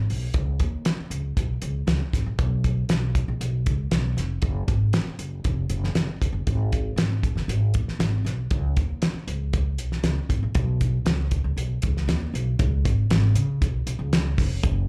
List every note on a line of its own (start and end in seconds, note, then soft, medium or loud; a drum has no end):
0.10 0.32 B1 medium
0.10 open hi-hat soft
0.34 0.57 C#2 loud
0.34 kick loud
0.34 closed hi-hat medium
0.60 0.82 D#2 medium
0.60 kick medium
0.60 closed hi-hat medium
0.85 snare loud
0.85 closed hi-hat medium
1.00 muted upright bass stroke soft
1.10 1.33 C#2 medium
1.10 closed hi-hat medium
1.37 1.59 B1 medium
1.37 kick medium
1.37 closed hi-hat medium
1.62 1.84 C#2 medium
1.62 closed hi-hat medium
1.87 1.99 C#2 medium
1.87 snare loud
1.87 closed hi-hat medium
2.13 2.25 G#1 medium
2.13 kick medium
2.13 snare soft
2.13 closed hi-hat medium
2.26 2.37 A#1 medium
2.39 2.84 B1 loud
2.39 kick loud
2.39 closed hi-hat medium
2.64 kick medium
2.64 closed hi-hat medium
2.89 3.23 B1 medium
2.89 snare loud
2.89 closed hi-hat medium
3.15 kick medium
3.15 closed hi-hat medium
3.28 3.39 A#1 medium
3.41 3.66 B1 medium
3.41 closed hi-hat medium
3.66 3.89 C#2 medium
3.66 kick medium
3.66 closed hi-hat medium
3.91 4.14 B1 medium
3.91 snare medium
3.91 closed hi-hat loud
4.17 4.39 F1 medium
4.17 snare soft
4.17 closed hi-hat medium
4.42 4.65 F#1 medium
4.42 kick loud
4.42 closed hi-hat medium
4.68 4.90 G#1 medium
4.68 kick medium
4.68 closed hi-hat medium
4.93 snare loud
4.93 closed hi-hat medium
5.06 muted upright bass stroke soft
5.19 5.42 F#1 medium
5.19 closed hi-hat medium
5.44 5.67 F1 medium
5.44 kick medium
5.44 closed hi-hat medium
5.70 5.93 F#1 medium
5.70 closed hi-hat medium
5.84 snare soft
5.95 6.07 F#1 medium
5.95 snare loud
5.95 closed hi-hat medium
6.21 6.32 F1 medium
6.21 kick medium
6.21 closed hi-hat medium
6.33 6.45 F#1 medium
6.47 6.92 G#1 loud
6.47 kick loud
6.47 closed hi-hat medium
6.72 kick medium
6.72 closed hi-hat medium
6.96 7.31 G#1 medium
6.96 snare loud
6.96 closed hi-hat medium
7.23 kick medium
7.23 closed hi-hat medium
7.35 7.47 F#1 medium
7.35 snare soft
7.48 7.71 G#1 medium
7.48 closed hi-hat medium
7.74 7.97 A#1 medium
7.74 kick medium
7.74 closed hi-hat medium
7.88 snare soft
7.99 8.22 G#1 medium
7.99 snare loud
7.99 closed hi-hat medium
8.25 8.47 B1 medium
8.25 snare soft
8.25 closed hi-hat medium
8.51 8.74 C#2 loud
8.51 kick loud
8.51 closed hi-hat medium
8.77 8.99 D#2 medium
8.77 kick medium
8.77 closed hi-hat medium
9.02 snare loud
9.02 closed hi-hat medium
9.14 muted upright bass stroke soft
9.27 9.78 C#2 medium
9.27 closed hi-hat medium
9.53 kick medium
9.53 closed hi-hat medium
9.78 10.01 B1 medium
9.78 closed hi-hat medium
9.92 snare soft
10.03 10.15 C#2 medium
10.03 snare medium
10.03 closed hi-hat medium
10.29 10.41 G#1 medium
10.29 kick medium
10.29 closed hi-hat medium
10.43 10.54 A#1 medium
10.55 11.00 B1 loud
10.55 kick loud
10.55 closed hi-hat medium
10.81 kick medium
10.81 closed hi-hat medium
11.05 11.39 C#2 medium
11.05 snare loud
11.05 closed hi-hat medium
11.31 kick medium
11.31 closed hi-hat medium
11.44 11.56 C#2 medium
11.57 11.79 B1 medium
11.57 closed hi-hat medium
11.82 12.05 C#2 medium
11.82 kick medium
11.82 closed hi-hat medium
11.97 snare soft
12.08 12.30 D#2 medium
12.08 snare loud
12.08 closed hi-hat medium
12.34 12.56 B1 medium
12.34 closed hi-hat medium
12.59 12.82 C#2 loud
12.59 kick loud
12.59 closed hi-hat medium
12.85 13.07 G#1 medium
12.85 kick medium
12.85 closed hi-hat medium
13.10 13.33 G#1 medium
13.10 snare loud
13.10 closed hi-hat medium
13.35 13.58 C#3 loud
13.35 closed hi-hat medium
13.62 13.84 B1 medium
13.62 kick medium
13.62 closed hi-hat medium
13.87 13.98 B1 medium
13.87 closed hi-hat medium
13.99 14.33 C#2 medium
14.13 snare loud
14.13 closed hi-hat medium
14.38 14.60 F1 medium
14.38 kick medium
14.38 snare soft
14.38 open hi-hat medium
14.63 14.86 F#1 loud
14.63 kick loud
14.63 closed hi-hat medium